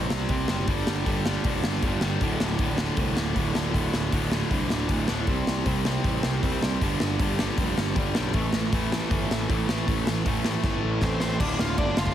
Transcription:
Already playing: C3 G3 C4
0.10 C2, snare
0.29 C2 C3 G3 C4, kick, open hi-hat
0.48 F#1 C3 G3 C4, snare
0.68 G1 G2 D3 G3, kick, open hi-hat
0.87 G1, snare
1.06 G1 G2 D3 G3, kick, open hi-hat
1.26 G2 D3 G3, snare
1.44 F1 G2 D3 G3, kick, open hi-hat
1.64 G1, snare
1.82 G1 G2 D3 G3, kick, open hi-hat
2.01 G1 G2 D3 G3, snare
2.21 D1 D2 A2 D3, kick, open hi-hat
2.40 D1, snare
2.59 D1 D2 A2 D3, kick, open hi-hat
2.78 D2 A2 D3, snare
2.97 C2 D2 A2 D3, kick, open hi-hat
3.16 D1, snare
3.36 D1 D2 A2 D3, kick, open hi-hat
3.55 D1 D2 A2 D3, snare
3.74 D1 D2 A2 D3, kick, open hi-hat
3.93 D1, snare
4.12 D1 D2 A2 D3, kick, open hi-hat
4.31 D2 A2 D3, snare
4.51 C2 D2 A2 D3, kick, open hi-hat
4.70 D1, snare
4.89 D1 D2 A2 D3, kick, open hi-hat
5.08 D1 D2 A2 D3, snare
5.27 C2 C3 G3 C4, kick, open hi-hat
5.47 C2, snare
5.66 C2 C3 G3 C4, kick, open hi-hat
5.85 C3 G3 C4, snare
6.04 A1 C3 G3 C4, kick, open hi-hat
6.23 C2, snare
6.43 C2 C3 G3 C4, kick, open hi-hat
6.62 C2 C3 G3 C4, snare
6.81 G1 G2 D3 G3, kick, open hi-hat
7.00 G1, snare
7.19 G1 G2 D3 G3, kick, open hi-hat
7.39 G2 D3 G3, snare
7.58 F1 G2 D3 G3, kick, open hi-hat
7.77 G1, snare
7.96 G1 G2 D3 G3, kick, open hi-hat
8.15 B1 G2 D3 G3, snare
8.33 A1 A2 E3 A3, kick, open hi-hat
8.53 A1, snare
8.72 A1 A2 E3 A3, kick, open hi-hat
8.92 A2 E3 A3, snare
9.10 G1 A2 E3 A3, kick, open hi-hat
9.30 A1, snare
9.49 A1 A2 E3 A3, kick, open hi-hat
9.68 A1 A2 E3 A3, snare
9.87 A1 A2 E3 A3, kick, open hi-hat
10.07 A1, snare
10.26 A1 A2 E3 A3, kick, open hi-hat
10.44 A2 E3 A3, snare
10.63 G1 A2 E3 A3, kick, snare
10.83 A1
11.01 A1 A2 E3 A3 C4 C5, kick, snare
11.20 A1 A2 E3 A3 C4 C5, snare
11.40 D1 D2 A2 D3 A3 D4 F4 D5, kick, crash
11.59 D1 F4 F5, snare
11.78 G1 D4 D5, kick, ride
11.96 G1 D2 A2 D3 A3 F4 F5, snare
12.07 kick

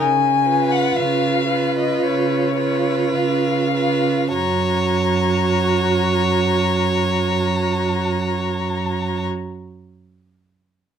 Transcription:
Already playing: C#3
0.00 G#5
0.47 F4 B4
0.72 F#5
0.96 C#3 F5
1.48 F4 B4
1.77 D#5
2.02 C#3 C#5
2.58 F4 B4
3.14 C#3 F5
3.75 F4 B4
4.32 F#2 F#4 C#5 A#5

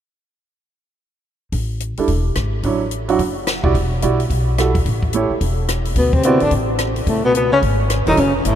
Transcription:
1.52 A1, kick, open hi-hat
1.80 closed hi-hat
1.97 G3 D4 E4 A4, muted upright bass stroke, open hi-hat
2.08 E1, kick, open hi-hat
2.35 G#1, cross-stick, closed hi-hat
2.63 A1 F#3 D4 E4 C#5, kick, open hi-hat
2.91 closed hi-hat
3.08 F#3 D4 E4 F#4, open hi-hat
3.19 F#1, kick, open hi-hat
3.47 cross-stick, snare, closed hi-hat
3.63 B1 G3 E4 F#4 D5, kick
3.74 E1, kick, open hi-hat
4.02 B1 G3 E4 F#4 D5, closed hi-hat
4.20 open hi-hat
4.30 B1, kick, open hi-hat
4.58 G3 E4 F#4 A4, cross-stick, closed hi-hat
4.75 kick, open hi-hat
4.86 A1, kick, open hi-hat
5.03 kick
5.13 A3 E4 G4 C#5, closed hi-hat
5.30 muted upright bass stroke
5.41 E1, kick, open hi-hat
5.69 cross-stick, closed hi-hat
5.85 open hi-hat
5.96 D2 B2 B3, kick, open hi-hat
6.13 C3 C4, kick
6.23 C3 B3 C4 E4 F#4 D5, closed hi-hat
6.40 A2 D3 D4, open hi-hat
6.51 A1, kick, open hi-hat
6.79 cross-stick, closed hi-hat
6.96 open hi-hat
7.06 C#2 A2 A3, kick, open hi-hat
7.25 B2 B3
7.35 B2 B3, closed hi-hat
7.52 C#3 C#4
7.62 G#1, kick, open hi-hat
7.90 cross-stick, closed hi-hat
8.07 F1 D#3 F#3 C#4 D#4 E4 A4, open hi-hat
8.17 F#1 C#3 C#4, kick, open hi-hat
8.35 E2 E3
8.45 G1 A2 A3, closed hi-hat

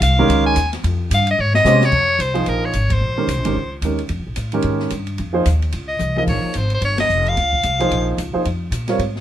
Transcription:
0.01 C2 F5, hi-hat pedal, ride
0.19 D#3 G#3 C#4 G4 A#4
0.28 C#2, ride
0.46 G#5
0.56 D#2, hi-hat pedal, ride
0.73 snare, ride
0.84 F2, ride
1.10 G2 F5, hi-hat pedal, ride
1.27 ride
1.31 D#5
1.39 G#2 C#5
1.54 D#5, snare
1.64 C3 G#3 C#4 G4 C5 D#5, snare, hi-hat pedal
1.81 snare
1.85 C#5
1.92 F2, kick, crash
2.19 C2 C5, hi-hat pedal, ride
2.34 F3 A#3 D#4 G#4 C5, ride
2.46 A#1 A#4, ride
2.65 C#5
2.73 G#1, hi-hat pedal, ride
2.90 C5, kick, ride
3.01 A#1
3.17 D#3 G#3 C#4 G4 A#4
3.28 C2, hi-hat pedal, ride
3.37 A#1
3.45 G#1 D#3 G#3 C#4 G4 A#4, ride
3.56 C#2
3.82 D#2 D#3 G#3 C#4 G4 A#4, hi-hat pedal, ride
3.98 ride
4.09 F2, ride
4.19 C#2
4.27 A#1
4.36 A2, hi-hat pedal, ride
4.52 D#3 G#3 C#4 G4 A#4, ride
4.62 G#2, ride
4.80 snare
4.90 G2, hi-hat pedal, ride
5.07 ride
5.18 F2, ride
5.33 F3 A#3 D#4 G#4 C5
5.45 D#2, hi-hat pedal, ride
5.62 ride
5.72 C#2, ride
5.88 D#5
5.99 C2, hi-hat pedal, high tom
6.16 F3 A#3 D#4 G#4 A#4 D#5, high tom
6.27 A#1 C#5, kick, crash
6.44 muted upright bass stroke
6.54 G#1 C5, hi-hat pedal, ride
6.70 ride
6.74 C5
6.81 G1 C#5, ride
6.98 D#5, snare, ride
7.09 F1, hi-hat pedal
7.26 F5, ride
7.37 C#2, snare, ride
7.53 kick
7.63 C2, hi-hat pedal, ride
7.79 F3 A#3 D#4 G#4 C5, ride
7.90 A#1, ride
8.18 C#2, hi-hat pedal, ride
8.33 F3 A#3 D#4 G#4 C5, muted upright bass stroke
8.45 F2, ride
8.71 A#2, hi-hat pedal, ride
8.88 G3 C4 F4 A#4 C#5, snare, ride
8.99 G#2, ride
9.16 snare

